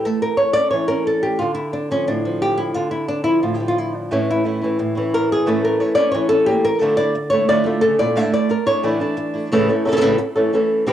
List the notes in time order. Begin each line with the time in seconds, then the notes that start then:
Already playing: E3
0.05 A3 A4
0.22 A#4
0.37 C#5
0.53 C#4 D5
0.71 E3 C#5
0.88 C#4 A#4
1.07 A4
1.23 G4
1.39 D3 F4
1.55 E4
1.73 D4
1.91 F3 C#4
2.07 A2 D4
2.25 F3
2.42 G4
2.58 E4
2.74 D3 F4
2.91 E4
3.08 D4
3.24 F3 E4
3.43 A2 F4
3.54 G4
3.60 F3
3.68 F4
3.78 E4
3.95 D4
4.11 A2 E3 A3 C#4 E4
4.31 E4
4.44 E3 A3 C#4 E4
4.61 E3 A3 C#4 E4
4.79 A2, muted nylon-string guitar stroke
4.95 E3 A3 C#4 E4
5.14 A#4
5.32 G#4
5.46 A2 E3 A3 C#4 E4 A4
5.65 A#4
5.80 E3 A3 C#4 E4 C#5
5.95 A3 C#4 E4 D5
6.11 E3 C#5, muted nylon-string guitar stroke
6.29 A3 C#4 E4 A4
6.46 A#3 G4
6.65 A#4
6.80 D3 F3 A3 D4 E4 A4
6.97 A3 D4 E4 D5
7.15 muted nylon-string guitar stroke
7.30 A3 D4 E4 C#5
7.48 D3 F3 A3 D4 E4 D5
7.64 A3 D4 E4 F4
7.81 C#3 A4, muted nylon-string guitar stroke
7.99 A#2 A3 D4 E4 D5
8.16 A2 D3 A3 D4 E4 E5
8.32 A3 D4 E4 D5
8.49 A#4, muted nylon-string guitar stroke
8.66 A3 D4 E4 C#5
8.83 A2 D3 E3 A3 D4 E4 D5
9.00 A3 D4 E4
9.17 muted nylon-string guitar stroke
9.34 A3 D4 E4
9.52 A2 C#3 E3 A3 C#4 A4
9.69 E3 A3 C#4 A4
9.85 C#3 E3 A3 C#4 A4
9.92 C#3 E3 A3 C#4 A4
9.97 C#3 E3 A3 C#4 A4
10.01 A2 C#3 E3 A3 C#4 A4
10.18 muted nylon-string guitar stroke
10.36 E3 A3 C#4 A4
10.53 E3 A3 C#4 A4
10.86 C3 E3 C4 E4 G4